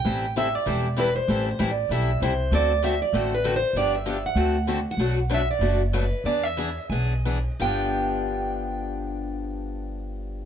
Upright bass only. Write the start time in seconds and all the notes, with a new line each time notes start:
0.05 A1
0.66 E1
1.28 A1
1.60 A1
1.89 B1
2.20 C2
2.51 D2
3.13 A1
3.73 G1
4.35 D2
4.97 B1
5.59 F#1
6.24 E2
6.89 B1
7.60 G1